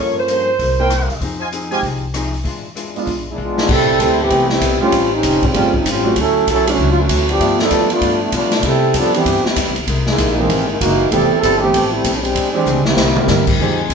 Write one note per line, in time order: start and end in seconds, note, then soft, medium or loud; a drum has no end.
0.00 0.18 G2 soft
0.00 0.56 G2 medium
0.00 0.18 F3 medium
0.00 0.19 A#3 soft
0.00 0.44 A#3 soft
0.00 0.45 C#4 soft
0.00 0.19 C#4 soft
0.00 0.45 F4 soft
0.00 0.45 A4 medium
0.00 0.17 C#5 medium
0.18 1.06 C5 medium
0.27 0.48 G2 medium
0.27 0.49 F3 medium
0.27 0.49 A#3 medium
0.27 0.50 C#4 medium
0.27 closed hi-hat medium
0.59 1.06 C2 medium
0.59 0.80 C3 soft
0.59 0.80 G3 soft
0.59 0.81 A#3 soft
0.59 0.81 E4 medium
0.59 kick soft
0.59 open hi-hat soft
0.79 0.89 A#3 medium
0.79 0.90 C4 medium
0.79 1.19 E4 medium
0.79 0.90 E4 medium
0.79 1.19 A#4 medium
0.79 0.90 A#4 medium
0.79 1.19 C5 medium
0.79 1.19 G5 medium
0.90 1.11 C3 medium
0.90 1.11 G3 medium
0.90 1.11 A#3 medium
0.90 1.12 E4 medium
0.90 cross-stick medium
0.90 closed hi-hat medium
1.10 1.20 C3 medium
1.10 open hi-hat soft
1.20 1.80 F2 medium
1.20 1.41 F3 medium
1.20 1.42 C4 medium
1.20 1.43 D#4 medium
1.20 1.43 G#4 medium
1.20 kick soft
1.20 open hi-hat soft
1.40 1.48 F4 medium
1.40 1.48 C5 medium
1.40 1.48 D#5 medium
1.40 1.48 G#5 medium
1.52 1.73 F3 medium
1.52 1.73 C4 medium
1.52 1.73 D#4 medium
1.52 1.74 G#4 medium
1.52 closed hi-hat medium
1.71 1.81 G#3 medium
1.71 1.82 C4 medium
1.71 1.82 D#4 medium
1.71 1.79 F4 medium
1.71 1.82 G4 medium
1.71 1.79 C5 medium
1.71 1.79 D#5 medium
1.71 1.79 G#5 medium
1.71 open hi-hat soft
1.82 2.42 C2 medium
1.82 2.04 F3 soft
1.82 2.04 C4 medium
1.82 2.05 D#4 medium
1.82 2.05 G#4 medium
1.82 kick soft
1.82 open hi-hat soft
2.14 2.35 F3 medium
2.14 2.35 C4 medium
2.14 2.36 D#4 medium
2.14 2.36 G#4 medium
2.14 cross-stick medium
2.14 closed hi-hat medium
2.34 open hi-hat soft
2.44 3.04 E2 medium
2.44 2.65 E3 medium
2.44 2.66 G#3 medium
2.44 2.66 D4 medium
2.44 2.67 F4 medium
2.44 kick soft
2.44 open hi-hat soft
2.76 2.97 E3 medium
2.76 2.97 G#3 medium
2.76 2.97 D4 medium
2.76 2.97 F4 medium
2.76 closed hi-hat medium
2.96 3.06 G#3 medium
2.96 3.07 B3 medium
2.96 3.07 D4 medium
2.96 3.07 F4 medium
2.96 open hi-hat soft
3.05 3.36 B1 medium
3.05 3.27 E3 soft
3.05 3.27 G#3 soft
3.05 3.28 D4 medium
3.05 3.28 F4 medium
3.05 kick soft
3.05 open hi-hat soft
3.29 3.39 G#3 medium
3.29 3.39 B3 medium
3.29 3.39 D4 medium
3.29 3.39 E4 medium
3.36 3.67 B1 medium
3.36 3.58 E3 medium
3.36 3.58 G#3 medium
3.36 3.59 D4 medium
3.36 3.59 F4 medium
3.40 3.70 G#3 medium
3.40 3.70 B3 medium
3.40 3.70 D4 medium
3.40 3.70 F4 medium
3.58 snare medium
3.67 3.99 C2 medium
3.67 3.89 A3 soft
3.67 3.89 C4 soft
3.67 3.90 G4 soft
3.67 3.90 B4 medium
3.67 kick medium
3.67 crash medium
3.71 4.01 G3 medium
3.71 4.01 C4 medium
3.71 4.01 E4 medium
3.71 4.01 A4 loud
3.99 4.30 D2 loud
3.99 4.20 G3 medium
3.99 4.20 A3 medium
3.99 4.21 C4 medium
3.99 4.19 C4 medium
3.99 4.19 E4 medium
3.99 4.21 G4 medium
3.99 4.20 A4 loud
3.99 4.21 B4 medium
3.99 kick soft
3.99 hi-hat pedal medium
3.99 ride medium
4.21 4.51 E3 medium
4.21 4.50 B3 loud
4.21 4.50 C4 medium
4.21 4.52 G4 loud
4.30 4.60 C2 medium
4.30 4.48 G3 medium
4.30 4.52 A3 soft
4.30 4.49 A3 medium
4.30 4.49 B3 soft
4.30 4.49 C4 medium
4.30 4.52 C4 soft
4.30 4.49 E4 medium
4.30 4.53 G4 soft
4.30 4.53 B4 medium
4.30 kick soft
4.30 ride medium
4.50 4.81 G3 medium
4.50 4.82 B3 medium
4.50 4.81 C4 medium
4.50 4.82 E4 medium
4.50 snare soft
4.61 4.80 B1 loud
4.61 4.83 A3 medium
4.61 4.83 C4 medium
4.61 4.83 G4 medium
4.61 4.84 B4 medium
4.61 kick soft
4.61 hi-hat pedal medium
4.61 ride medium
4.81 4.91 G3 medium
4.81 5.11 G3 medium
4.81 4.92 A3 medium
4.81 4.92 C4 medium
4.81 5.11 C4 medium
4.81 4.92 C#4 medium
4.81 5.11 C#4 medium
4.81 5.11 F4 loud
4.81 4.92 G4 medium
4.81 muted upright bass stroke soft
4.91 5.23 A1 medium
4.91 5.13 A2 medium
4.91 5.13 G3 soft
4.91 5.14 C#4 medium
4.91 5.14 F4 medium
4.91 kick soft
4.91 ride medium
5.14 5.44 G3 medium
5.14 5.44 C4 medium
5.14 5.44 C#4 medium
5.14 5.44 D#4 loud
5.23 5.54 F1 loud
5.23 5.45 A2 medium
5.23 5.45 G3 medium
5.23 5.45 C#4 medium
5.23 5.45 F4 medium
5.23 kick soft
5.23 hi-hat pedal medium
5.23 ride medium
5.43 5.76 C#3 medium
5.43 5.76 F3 medium
5.43 5.76 G3 medium
5.43 5.76 C4 loud
5.43 kick medium
5.43 ride soft
5.54 5.84 G1 medium
5.54 5.76 A2 soft
5.54 5.72 G3 medium
5.54 5.76 G3 soft
5.54 5.72 A3 medium
5.54 5.72 C4 medium
5.54 5.73 C#4 medium
5.54 5.77 C#4 soft
5.54 5.73 F4 medium
5.54 5.77 F4 soft
5.54 kick soft
5.54 ride medium
5.74 5.88 F3 medium
5.74 5.88 A3 medium
5.74 5.88 C4 medium
5.74 5.88 D#4 medium
5.74 kick soft
5.85 6.15 A1 loud
5.85 6.07 A2 medium
5.85 6.07 G3 medium
5.85 6.08 C#4 medium
5.85 6.08 F4 medium
5.85 kick soft
5.85 hi-hat pedal medium
5.85 ride medium
5.91 6.19 G3 medium
5.91 6.19 C4 medium
5.91 6.19 C#4 medium
5.91 6.19 F4 loud
6.04 6.15 F#3 medium
6.04 6.15 A3 medium
6.04 6.15 C#4 medium
6.04 6.16 D4 medium
6.04 6.16 F#4 medium
6.16 6.46 D2 medium
6.16 6.38 D3 medium
6.16 6.38 F#3 medium
6.16 6.39 C#4 soft
6.16 kick soft
6.16 ride medium
6.20 6.47 F#3 medium
6.20 6.47 C#4 loud
6.20 6.39 E4 medium
6.20 6.48 E4 medium
6.20 6.48 A4 loud
6.47 6.78 B1 medium
6.47 6.69 D3 medium
6.47 6.70 F#3 medium
6.47 6.70 C#4 medium
6.47 6.70 E4 medium
6.47 kick soft
6.47 hi-hat pedal soft
6.47 ride medium
6.51 6.68 F#3 medium
6.51 6.68 C#4 medium
6.51 6.68 E4 loud
6.51 6.68 A4 loud
6.67 6.91 E3 medium
6.67 7.07 F#3 medium
6.67 7.08 A3 medium
6.67 6.91 A3 medium
6.67 7.08 C#4 medium
6.67 6.91 C#4 medium
6.67 7.08 D4 medium
6.67 7.08 E4 medium
6.67 6.91 F#4 loud
6.67 ride medium
6.78 7.08 C#2 loud
6.78 7.00 D3 soft
6.78 7.00 F#3 soft
6.78 7.01 C#4 soft
6.78 7.01 E4 medium
6.78 kick soft
6.91 6.99 F4 medium
7.00 7.30 E3 medium
7.00 7.30 A3 medium
7.00 7.30 C#4 medium
7.00 7.30 F#4 medium
7.09 7.40 D2 loud
7.09 7.31 D3 medium
7.09 7.31 F#3 medium
7.09 7.31 C#4 medium
7.09 7.32 E4 medium
7.09 kick soft
7.09 hi-hat pedal medium
7.09 ride medium
7.29 7.58 F3 medium
7.29 7.59 B3 medium
7.29 7.59 D4 medium
7.29 7.59 G4 medium
7.29 ride soft
7.40 7.70 G2 medium
7.40 7.61 G2 soft
7.40 7.62 F3 soft
7.40 8.27 A3 soft
7.40 8.27 B3 medium
7.40 7.62 B3 medium
7.40 8.27 D4 medium
7.40 7.62 E4 medium
7.40 8.27 F4 medium
7.40 8.27 E5 medium
7.40 kick soft
7.40 ride medium
7.59 7.90 F3 medium
7.59 7.90 B3 medium
7.59 7.90 D4 medium
7.59 7.90 A4 loud
7.59 snare medium
7.71 8.01 E2 medium
7.71 7.92 G2 medium
7.71 7.92 F3 medium
7.71 7.93 B3 medium
7.71 7.93 E4 medium
7.71 kick soft
7.71 hi-hat pedal soft
7.71 ride medium
7.90 8.20 A3 medium
7.90 8.20 B3 medium
7.90 8.20 D4 medium
7.90 8.20 F4 medium
7.90 ride medium
8.01 8.31 G2 medium
8.01 8.23 G2 soft
8.01 8.24 F3 soft
8.01 8.24 B3 soft
8.01 8.24 E4 medium
8.01 kick soft
8.01 ride medium
8.21 8.33 A3 medium
8.21 8.33 B3 medium
8.21 8.33 D4 medium
8.21 8.34 E4 medium
8.32 8.54 G2 medium
8.32 8.62 B2 loud
8.32 8.54 F3 medium
8.32 8.63 A3 medium
8.32 8.54 B3 medium
8.32 8.63 B3 medium
8.32 8.63 D4 medium
8.32 8.55 E4 medium
8.32 8.63 F4 medium
8.32 kick soft
8.32 hi-hat pedal medium
8.32 ride medium
8.51 snare medium
8.51 ride medium
8.63 8.93 C3 medium
8.63 8.85 C3 soft
8.63 8.86 G3 medium
8.63 8.96 G3 medium
8.63 8.86 B3 soft
8.63 8.97 E4 medium
8.63 8.97 A4 loud
8.63 kick soft
8.63 ride medium
8.67 8.97 C4 medium
8.67 8.87 E4 medium
8.94 9.25 F2 loud
8.94 9.16 C3 medium
8.94 9.15 F3 medium
8.94 9.16 G3 medium
8.94 9.16 B3 medium
8.94 9.15 B3 medium
8.94 9.15 D4 medium
8.94 9.17 E4 medium
8.94 9.15 A4 medium
8.94 kick soft
8.94 hi-hat pedal medium
8.94 ride medium
9.14 9.25 E3 medium
9.14 9.45 E3 medium
9.14 9.26 G3 medium
9.14 9.25 B3 medium
9.14 9.45 B3 medium
9.14 9.26 C4 medium
9.14 9.45 C4 medium
9.14 9.26 D4 medium
9.14 9.45 G4 loud
9.14 ride medium
9.25 9.44 G2 medium
9.25 9.47 C3 soft
9.25 9.47 G3 soft
9.25 9.48 B3 soft
9.25 9.48 E4 soft
9.25 kick soft
9.25 ride medium
9.45 9.78 G3 medium
9.45 9.78 B3 medium
9.45 9.78 C4 medium
9.45 9.78 E4 medium
9.45 muted upright bass stroke soft
9.45 snare soft
9.56 9.70 E2 loud
9.56 9.78 C3 medium
9.56 9.78 G3 medium
9.56 9.78 B3 medium
9.56 9.78 E4 medium
9.56 kick soft
9.56 hi-hat pedal medium
9.56 ride medium
9.68 9.78 C2 medium
9.76 9.87 B1 medium
9.76 ride medium
9.86 10.18 C2 medium
9.86 10.08 C3 medium
9.86 10.09 G#3 medium
9.86 10.09 A#3 medium
9.86 10.10 E4 medium
9.86 kick soft
9.86 ride medium
10.07 10.37 G#3 medium
10.07 10.37 A#3 medium
10.07 10.37 D#4 medium
10.07 10.37 E4 medium
10.07 snare medium
10.18 10.49 A#1 loud
10.18 10.40 C3 medium
10.18 10.40 G#3 medium
10.18 10.40 A#3 medium
10.18 10.40 E4 medium
10.18 kick soft
10.18 hi-hat pedal medium
10.18 ride medium
10.39 10.49 E3 medium
10.39 10.70 E3 medium
10.39 10.69 G#3 medium
10.39 10.50 G#3 medium
10.39 10.68 A#3 medium
10.39 10.50 A#3 medium
10.39 10.50 C4 medium
10.39 10.70 C4 medium
10.39 10.50 D#4 medium
10.49 10.80 G#1 medium
10.49 10.70 C3 soft
10.49 10.71 G#3 medium
10.49 10.72 A#3 medium
10.49 10.72 E4 medium
10.49 kick soft
10.49 ride medium
10.69 10.81 D#3 medium
10.69 10.81 G#3 medium
10.69 10.79 A#3 medium
10.69 10.81 E4 medium
10.80 11.10 F#1 loud
10.80 11.02 C3 medium
10.80 11.10 E3 medium
10.80 11.02 G#3 medium
10.80 11.10 A#3 medium
10.80 11.03 A#3 medium
10.80 11.10 D#4 medium
10.80 11.03 E4 medium
10.80 11.10 F#4 loud
10.80 kick soft
10.80 hi-hat pedal medium
10.80 ride medium
11.11 11.30 F1 medium
11.11 11.30 E3 medium
11.11 11.33 F3 soft
11.11 11.40 G3 loud
11.11 11.30 A3 medium
11.11 11.30 B3 medium
11.11 11.33 B3 soft
11.11 11.40 C4 loud
11.11 11.30 C4 medium
11.11 11.40 E4 loud
11.11 11.34 E4 medium
11.11 11.30 G4 medium
11.11 11.40 A4 loud
11.11 kick soft
11.11 ride medium
11.15 11.34 A4 medium
11.31 muted upright bass stroke soft
11.41 11.73 G1 loud
11.41 11.63 F3 medium
11.41 11.60 G3 medium
11.41 11.64 B3 medium
11.41 11.59 C4 medium
11.41 11.60 E4 loud
11.41 11.64 E4 medium
11.41 11.60 A4 loud
11.41 11.64 A4 medium
11.41 kick soft
11.41 hi-hat pedal medium
11.41 ride medium
11.60 11.92 E3 medium
11.60 11.73 E3 medium
11.60 11.91 A3 loud
11.60 11.73 A3 medium
11.60 11.91 C4 loud
11.60 11.92 G4 loud
11.64 11.73 B3 medium
11.64 11.74 C4 medium
11.64 11.74 G4 medium
11.74 12.04 A1 medium
11.74 11.95 F3 soft
11.74 11.95 B3 soft
11.74 11.96 E4 medium
11.74 11.96 A4 medium
11.74 kick soft
11.74 ride medium
11.92 12.15 G3 medium
11.92 12.15 A3 medium
11.92 12.15 C4 medium
11.92 12.15 E4 medium
12.03 12.34 B1 loud
12.03 12.25 F3 medium
12.03 12.25 B3 medium
12.03 12.26 E4 medium
12.03 12.26 A4 medium
12.03 kick soft
12.03 hi-hat pedal medium
12.03 ride medium
12.15 12.24 C#4 medium
12.20 12.51 G3 medium
12.20 12.52 G#3 medium
12.20 12.51 C4 medium
12.20 12.52 D4 medium
12.25 ride medium
12.34 12.65 E2 medium
12.34 12.56 E3 soft
12.34 12.56 C4 soft
12.34 12.57 D4 medium
12.34 12.57 G#4 medium
12.34 kick soft
12.34 ride medium
12.52 12.65 E3 medium
12.52 12.83 G3 medium
12.52 12.83 G#3 medium
12.52 12.65 G#3 medium
12.52 12.82 C4 medium
12.52 12.65 C4 medium
12.52 12.83 D4 medium
12.52 12.66 D4 medium
12.52 12.66 G4 medium
12.66 12.96 C#2 medium
12.66 12.87 E3 medium
12.66 12.87 C4 medium
12.66 12.88 D4 medium
12.66 12.88 G#4 medium
12.66 hi-hat pedal medium
12.66 mid tom soft
12.84 13.47 G3 medium
12.84 13.47 A#3 medium
12.84 13.47 C4 medium
12.84 13.47 E4 loud
12.84 snare medium
12.97 13.27 C2 medium
12.97 13.18 C3 soft
12.97 13.19 G3 soft
12.97 13.19 A#3 soft
12.97 13.19 E4 medium
12.97 snare medium
13.16 13.57 G3 medium
13.16 13.57 A#3 medium
13.16 13.57 C4 medium
13.16 13.57 E4 medium
13.16 13.57 A#4 medium
13.16 mid tom medium
13.28 13.58 G2 loud
13.28 13.50 C3 medium
13.28 13.50 G3 medium
13.28 13.50 A#3 medium
13.28 13.51 E4 medium
13.28 snare medium
13.28 hi-hat pedal medium
13.47 kick medium
13.47 crash medium
13.58 13.89 F2 medium
13.58 13.80 F3 soft
13.58 13.94 F3 medium
13.58 13.77 F3 soft
13.58 13.77 G#3 soft
13.58 13.80 C4 medium
13.58 13.94 C4 medium
13.58 13.77 C4 medium
13.58 13.94 D#4 medium
13.58 13.78 D#4 soft
13.58 13.81 D#4 medium
13.58 13.78 G4 medium
13.58 13.94 G#4 loud
13.58 13.81 G#4 medium
13.89 13.94 D#2 medium
13.89 13.94 F3 medium
13.89 13.94 C4 medium
13.89 kick soft
13.89 hi-hat pedal medium
13.89 ride medium